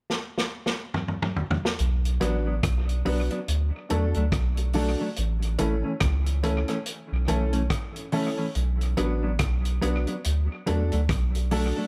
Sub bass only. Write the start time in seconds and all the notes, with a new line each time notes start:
1.80 B1
2.22 A1
2.64 B1
3.06 B1
3.48 D2
3.91 E2
4.16 D2
4.33 B1
5.18 A1
5.60 A1
6.01 C#2
7.12 B1
7.30 B1
8.56 B1
8.99 A1
9.40 B1
9.83 B1
10.26 D2
10.68 E2
10.93 D2
11.10 B1